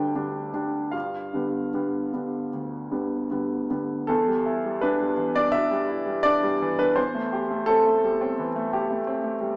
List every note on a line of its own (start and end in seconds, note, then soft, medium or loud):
0.00 0.96 D2 medium
0.00 0.15 D3 medium
0.00 0.15 G3 medium
0.00 0.16 D4 medium
0.00 0.90 G4 medium
0.00 0.97 A4 medium
0.00 0.93 G5 medium
0.00 0.97 A5 medium
0.15 0.50 D3 soft
0.15 0.50 G3 soft
0.15 0.50 D4 medium
0.53 0.90 D3 soft
0.53 0.90 G3 soft
0.53 0.90 D4 soft
0.91 1.33 G2 soft
0.91 3.66 F4 soft
0.91 3.69 F5 medium
1.33 1.69 D3 soft
1.33 1.70 G3 soft
1.33 1.70 B3 soft
1.74 2.09 D3 soft
1.74 2.09 G3 soft
1.74 2.10 B3 soft
2.13 2.49 D3 soft
2.13 2.49 G3 soft
2.13 2.49 B3 soft
2.53 2.91 D2 soft
2.91 3.26 D3 soft
2.91 3.26 G3 soft
2.91 3.27 B3 soft
3.30 3.66 D3 soft
3.30 3.66 G3 soft
3.30 3.67 B3 soft
3.70 4.05 D3 soft
3.70 4.05 G3 soft
3.70 4.05 B3 soft
4.07 5.50 E2 medium
4.07 4.81 A4 medium
4.28 4.57 G3 medium
4.46 4.75 E4 medium
4.65 4.93 G3 medium
4.81 5.11 D4 medium
4.81 5.35 B4 medium
5.01 5.29 G3 medium
5.17 5.46 E3 medium
5.36 5.65 D4 medium
5.36 5.53 D5 loud
5.52 5.82 B2 medium
5.52 6.24 E5 loud
5.71 6.00 G3 medium
5.89 6.17 E4 medium
6.06 6.35 G3 medium
6.23 6.54 D4 medium
6.23 6.78 D5 loud
6.43 6.72 G3 medium
6.62 6.90 E3 medium
6.79 6.97 D4 medium
6.79 6.97 B4 medium
6.96 8.33 E2 medium
6.96 7.66 C5 medium
7.15 7.43 A3 medium
7.33 7.60 G4 medium
7.50 7.78 A3 medium
7.66 7.95 C4 medium
7.66 9.56 A4 loud
7.86 8.13 A3 medium
8.04 8.30 G3 medium
8.21 8.48 C4 medium
8.39 8.65 E3 medium
8.56 8.82 A3 medium
8.73 9.00 G4 medium
8.90 9.17 A3 medium
9.07 9.34 C4 medium
9.24 9.51 A3 medium
9.41 9.56 G3 medium